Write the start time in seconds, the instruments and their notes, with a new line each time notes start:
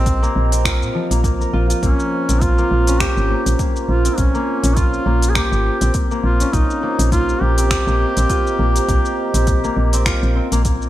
Already playing: fm bass A#1, harp A#3 C4 F4, duduk C4, ambient pad G4 C5 D#5 A#5
0.06 kick, open hi-hat, shaker
0.22 harp A#3, shaker
0.36 fm bass A#1
0.52 harp C4, open hi-hat, shaker
0.65 harp F4, finger snap, kick, open hi-hat, shaker
0.82 fm bass A#2, shaker
0.95 harp F3
1.11 fm bass A#1, harp A#3, open hi-hat, shaker
1.24 harp A#3, kick, open hi-hat, shaker
1.41 harp A#4, shaker
1.53 fm bass A#1, harp F4
1.70 harp F4, open hi-hat, shaker
1.83 fm bass A#1, harp A#3, duduk C#4, ambient pad F4, kick, open hi-hat, shaker
2.00 shaker
2.29 fm bass A#1, harp C4, open hi-hat, shaker
2.41 duduk F4, kick, open hi-hat, shaker
2.58 harp A#3, shaker
2.71 fm bass A#1
2.87 harp C#4, open hi-hat, shaker
3.00 harp F4, duduk G4, finger snap, kick, open hi-hat, shaker
3.17 fm bass G#1, shaker
3.30 harp A#3
3.46 fm bass A#1, open hi-hat, shaker
3.59 harp A#3, kick, open hi-hat, shaker
3.76 shaker
3.88 fm bass A#1, duduk F4
4.05 harp C4, open hi-hat, shaker
4.17 fm bass A#1, duduk C#4, kick, open hi-hat, shaker
4.35 harp A#3, shaker
4.64 fm bass A#1, harp C#4, open hi-hat, shaker
4.76 duduk F4, harp F4, kick, open hi-hat, shaker
4.94 shaker
5.06 fm bass A#1, harp A#3
5.22 open hi-hat, shaker
5.29 duduk G#4
5.35 harp A#3, duduk G4, finger snap, kick, open hi-hat, shaker
5.52 fm bass G#1, shaker
5.81 fm bass A#1, harp C4, open hi-hat, shaker
5.94 kick, open hi-hat, shaker
6.11 harp A#3, shaker
6.24 fm bass A#1, duduk F4
6.40 harp C#4, open hi-hat, shaker
6.53 fm bass A#1, duduk D#4, harp F4, ambient pad G4 C5 D#5 A#5, kick, open hi-hat, shaker
6.70 shaker
6.83 harp A#3
6.99 fm bass A#1, open hi-hat, shaker
7.12 harp A#3, duduk F4, kick, open hi-hat, shaker
7.29 shaker
7.41 fm bass A#1, duduk G4
7.58 harp C4, open hi-hat, shaker
7.71 finger snap, kick, open hi-hat, shaker
7.87 fm bass A#1, harp A#3, shaker
8.17 fm bass A#1, harp C4, open hi-hat, shaker
8.30 harp F4, kick, open hi-hat, shaker
8.47 shaker
8.59 fm bass A#1, harp A#3
8.76 open hi-hat, shaker
8.88 fm bass A#1, harp A#3, kick, open hi-hat, shaker
9.05 shaker
9.34 fm bass A#1, harp C4, open hi-hat, shaker
9.47 kick, open hi-hat, shaker
9.64 harp A#3, shaker
9.77 fm bass A#1
9.93 harp C4, open hi-hat, shaker
10.06 harp F4, finger snap, kick, open hi-hat, shaker
10.23 fm bass A#1, shaker
10.36 harp C4
10.52 fm bass A#1, harp A#3, open hi-hat, shaker
10.65 harp A#3, kick, open hi-hat, shaker
10.82 shaker